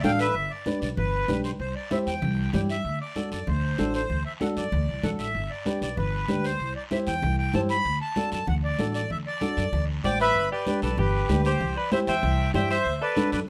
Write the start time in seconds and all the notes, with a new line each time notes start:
0.03 A1 D4 F#4 A4 F5 G5, high conga, short guiro
0.19 B4 E5, short guiro
0.35 G1, high conga, long guiro
0.50 D5
0.66 D4 G4 B4, high conga, short guiro
0.81 B1 D5, short guiro
0.97 G1 B4, high conga, low conga, long guiro
1.28 B1 D4 G4 B4, high conga, short guiro
1.44 C5, short guiro
1.59 C2 C5, high conga, long guiro
1.75 D5
1.91 E4 G4 C5 E5, high conga, short guiro
2.06 E2 G5, short guiro
2.22 C2, high conga, low conga, long guiro
2.53 G2 E4 G4 D5 G5, high conga, low conga, short guiro
2.69 E5, short guiro
2.85 D2, high conga, long guiro
3.01 D5
3.16 D4 F#4 A4, high conga, short guiro
3.31 F#2 D5, short guiro
3.47 D2 C5, high conga, low conga, long guiro
3.78 A1 D4 F#4 A4, high conga, short guiro
3.94 C5, short guiro
4.10 D2, high conga, low conga, long guiro
4.26 E5
4.40 D4 F#4 A4 F#5, high conga, short guiro
4.57 F#2 D5, short guiro
4.72 D2, high conga, low conga, long guiro
4.88 C2
5.03 B1 D4 F#4 A4 F#5, high conga, low conga, short guiro
5.19 A1 E5, short guiro
5.35 G1, high conga, long guiro
5.50 D5
5.65 D4 G4 B4, high conga, short guiro
5.81 B1 D5, short guiro
5.97 G1 B4, high conga, low conga, long guiro
6.28 D2 D4 G4 B4, high conga, short guiro
6.44 C5, short guiro
6.60 C2, high conga, long guiro
6.76 D5
6.91 E4 G4 C5 E5, high conga, short guiro
7.07 E2 G5, short guiro
7.22 C2, high conga, low conga, long guiro
7.38 G5
7.53 G2 E4 G4 C5 A5, high conga, low conga, short guiro
7.69 B5, short guiro
7.84 D2, high conga, long guiro
8.01 A5
8.16 D4 F#4 A4, high conga, short guiro
8.32 F#2 A5, short guiro
8.47 D2 F#5, high conga, low conga, long guiro
8.64 D5
8.79 A1 D4 F#4 A4, high conga, short guiro
8.94 D5, short guiro
9.10 D2 E5, high conga, low conga, long guiro
9.27 D5
9.41 D4 F#4 A4, high conga, short guiro
9.57 F#2, short guiro
9.73 D2, high conga, low conga, long guiro
10.04 A1 D4 F#4 C5 D5 G5 D6, high conga, short guiro
10.20 B4 E5 B5, short guiro
10.35 G1, high conga, long guiro
10.52 G4 B4 D5
10.66 D4 G4 B4, high conga, short guiro
10.82 B1 A4 B4 D5, short guiro
10.97 G1 G4 B4, high conga, low conga, long guiro
11.29 D2 D4 G4 B4, high conga, short guiro
11.45 G4 C5, short guiro
11.60 C2, high conga, low conga, long guiro
11.77 B4 D5
11.91 E4 G4 C5 E5, high conga, short guiro
12.07 E2 C5 E5 G5, short guiro
12.23 C2, high conga, low conga, long guiro
12.54 G2 E4 G4 C5 D5 E5 G5, high conga, low conga, short guiro
12.70 C5 E5, short guiro
12.85 D2, high conga, long guiro
13.02 A4 B4 D5
13.16 D4 F#4 A4, high conga, short guiro
13.32 F#2 B4 D5, short guiro